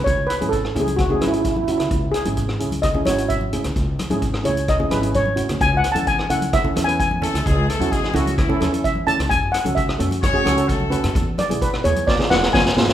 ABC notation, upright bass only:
X:1
M:4/4
L:1/16
Q:1/4=130
K:C#m
V:1 name="Upright bass" clef=bass
C,,2 z G,,,3 C,,4 G,,,4- G,,, C,, | C,,2 z G,,,3 C,,4 G,,,4- G,,, C,, | C,,2 z G,,,3 C,,4 G,,,4- G,,, C,, | C,,2 z E,,3 C,,4 E,,4- E,, C,, |
C,,2 z E,,3 C,,4 E,,4- E,, C,, | F,,2 z C,,3 F,,4 C,,4- C,, F,, | E,,2 z B,,,3 E,,4 E,,,2 F,,,2 G,,,2 |]